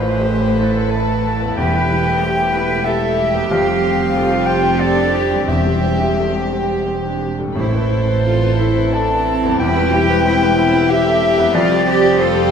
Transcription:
Already playing: A1 A2 A3 C4 E4 F4 A4 B4 C5 E5
0.07 B4
0.21 G4 C5
0.41 B4
0.57 E4 A4
0.76 B4
0.90 A4 A5
1.12 B4
1.27 A4
1.40 E2 B3
1.45 B3
1.49 E4
1.54 E2 G3 G4 B4 G5
1.58 E1 E2 G4
1.73 B4
1.92 E4
2.08 B4
2.22 G4 C5
2.41 B4
2.54 E4 B4
2.71 B4
2.85 G4 A4 E5
3.03 A4
3.17 G4
3.32 F2 G3 B3
3.41 G4
3.46 C5
3.50 F1 F2 C4 G4 F5
3.69 G4
3.84 C4
3.99 G4
4.15 F4 A4
4.31 G4
4.46 C4 G5
4.63 G4
4.80 C4 A4 D5
4.96 D4
5.13 G4
5.30 E2 G3
5.34 G3
5.39 E5
5.43 G4 C5
5.47 E1 E2 G3 C4 G4 E5
5.66 G4
5.83 C4
6.00 G4
6.18 A4
6.35 G4
6.53 C4
6.72 G4
6.87 C4
7.05 D4
7.22 G4
7.39 A2 G3
7.43 A3
7.47 C4
7.52 A1 A2 E4 A4 B5
7.56 A2 C4 E4 C5
7.74 B4
7.89 E4
8.07 B4
8.23 F4 C5
8.42 B4
8.58 E4
8.78 B4
8.94 D4 A4 A5
9.13 B4
9.28 C4 A4
9.42 E2 B3
9.47 G3
9.51 G4
9.56 E2 B4 G5
9.60 E1 E2 E4 G4
9.76 B4
9.93 E4 G4
10.09 B4
10.25 E4 C5
10.43 B4
10.58 E4
10.75 B4
10.89 G4 E5
11.06 A4
11.22 G4
11.37 F2 B3
11.41 G3
11.46 F4
11.50 G3 G4 D5
11.55 F1 F2 C4 F4 D5
11.71 G4
11.87 C4 G4
12.03 G4
12.19 F4 A4 C5
12.36 G4

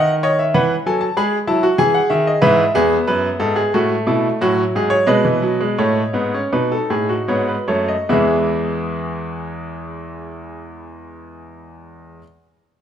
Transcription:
Already playing: D#3 D#5 F#5
0.23 C#5 D#5
0.39 E5
0.54 E3 B4 F#5
0.86 F#3 A4 G#5
1.01 A5
1.17 G#3 G#4 B5
1.47 F#3 E4 A5
1.63 F#4
1.78 E3 G#4 G#5
1.95 F#5
2.10 D#3 E5
2.27 D#5
2.42 G#2 E3 B4 E5
2.75 E2 B3 G#4
3.07 F#2 B4
3.40 G#2 A4
3.56 G#4
3.74 A2 A3 F#4
4.07 B2 E4
4.41 A2 F#3 F#4
4.76 G#2 G#4
4.90 C#5
5.07 B2 G#3 B4 D#5
5.25 E3
5.42 F#3
5.61 G#3
5.78 A2 A3 C#5
6.13 G#2 B3
6.34 C#4
6.52 B2 D#4 B4
6.72 A4
6.90 A2 G#4
7.09 F#4
7.28 G#2 B3 C#5
7.48 B4
7.68 F#2 A3 C#5
7.88 D#5
8.09 E2 E3 G#3 B3 G#4 E5

